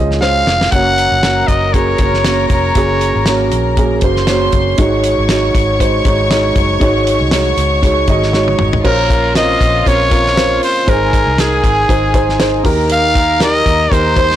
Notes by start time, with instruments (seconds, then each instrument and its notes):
Already playing: fingered electric bass C#2, upright piano C#3 G#3 C#4 D#4 F4 G#4 C5 D#5
0.11 snare
0.21 upright piano G#3 C#4 F4 C5, trumpet F5, snare
0.47 fingered electric bass F1, snare
0.61 snare
0.71 fingered electric bass F#1, upright piano A#3 C#4 F#4 C#5, violin section A#4 A#5, trumpet F#5, kick, closed hi-hat
0.98 closed hi-hat
1.12 fingered electric bass F#1
1.23 upright piano A#3 C#4 F#4 C#5, snare, closed hi-hat
1.47 fingered electric bass F#1, trumpet D#5, kick, closed hi-hat
1.73 upright piano A#3 C#4 F#4 G#4, trumpet C#5, kick, closed hi-hat
1.98 fingered electric bass F#1, upright piano A#3 C#4 F#4 C#5, kick, closed hi-hat
2.14 snare
2.24 upright piano A#3 C#4 F#4 C#5, snare, closed hi-hat
2.49 fingered electric bass F1, trumpet C#5, kick, closed hi-hat
2.75 fingered electric bass F#1, upright piano A#3 C#4 F#4 G#4, kick, closed hi-hat
3.01 closed hi-hat
3.16 fingered electric bass G#1
3.26 upright piano A#3 C#4 F#4 C#5, snare, closed hi-hat
3.52 fingered electric bass A#1, closed hi-hat
3.77 upright piano A#3 C#4 F#4 G#4, kick, closed hi-hat
4.01 fingered electric bass F#1, upright piano A#3 C#4 F#4 C5, violin section C5 C6, kick, closed hi-hat
4.16 snare
4.27 upright piano A#3 C#4 F#4 C#5, snare, closed hi-hat
4.52 fingered electric bass F#1, kick, closed hi-hat
4.78 fingered electric bass G#1, upright piano G#2 G#3 D#4 F#4 C#5, violin section C#5 C#6, kick, closed hi-hat
5.04 closed hi-hat
5.18 fingered electric bass G#1
5.28 upright piano G#3 D#4 F#4 C#5, snare, closed hi-hat
5.54 fingered electric bass G#1, kick, closed hi-hat
5.79 upright piano G#3 D#4 F#4 C5, kick, closed hi-hat
6.05 fingered electric bass G#1, upright piano G#3 D#4 F#4 C#5, kick, closed hi-hat
6.30 upright piano G#3 D#4 F#4 C#5, snare, closed hi-hat
6.56 fingered electric bass F#1, kick, closed hi-hat
6.80 fingered electric bass G#1, upright piano G#2 G#3 D#4 F#4 C#5, kick, closed hi-hat
7.07 closed hi-hat
7.21 fingered electric bass C2
7.31 upright piano G#3 D#4 F#4 C#5, snare, closed hi-hat
7.57 fingered electric bass C#2, closed hi-hat
7.82 upright piano G#3 D#4 F#4 C#5, kick, closed hi-hat
8.08 fingered electric bass G#1, upright piano G#3 D#4 F#4 D#5, kick, closed hi-hat
8.23 snare
8.33 upright piano G#3 D#4 F#4 C#5, snare
8.48 high tom
8.59 fingered electric bass G#1, mid tom
8.73 floor tom
8.84 fingered electric bass A#1, upright piano A#2 C#4 F4 A#4 C5 C#5, violin section F4 F5, trumpet A#4, kick, crash
9.10 kick, closed hi-hat
9.35 upright piano C4 C#4 F4 A#4 D#5, trumpet D#5, snare, closed hi-hat
9.61 fingered electric bass A#1, kick, closed hi-hat
9.85 fingered electric bass A#1, upright piano C4 C#4 F4 A#4 C#5, trumpet C#5, kick, closed hi-hat
10.10 upright piano C4 C#4 F4 A#4, kick, closed hi-hat
10.27 snare
10.36 upright piano C4 C#4 F4 A#4 C5, snare, closed hi-hat
10.63 trumpet C5, open hi-hat
10.87 fingered electric bass G#1, upright piano G#2 D#4 G#4 C5, violin section G#4 G#5, trumpet A#4, kick, closed hi-hat
11.13 kick, closed hi-hat
11.27 fingered electric bass C2
11.38 upright piano D#4 G#4 A#4, trumpet G#4, snare, closed hi-hat
11.63 fingered electric bass G#1, kick, closed hi-hat
11.88 fingered electric bass G#1, upright piano D#4 G#4 C5, kick, closed hi-hat
12.13 upright piano D#4 G#4 C5, kick, closed hi-hat
12.29 snare
12.39 upright piano D#4 G#4 C5, snare, closed hi-hat
12.63 fingered electric bass D#2, upright piano D#3 D#4 G4 A#4, violin section A#4 A#5, kick, open hi-hat
12.90 trumpet F5, closed hi-hat
13.15 kick, closed hi-hat
13.40 upright piano D#4 G4 A#4, trumpet D#5, snare, closed hi-hat
13.66 fingered electric bass D#2, kick, closed hi-hat
13.91 fingered electric bass D#2, upright piano D#4 G4 A#4, trumpet C5, kick, closed hi-hat
14.16 upright piano D#4 G4 C5, violin section C5 C6, kick, closed hi-hat
14.31 snare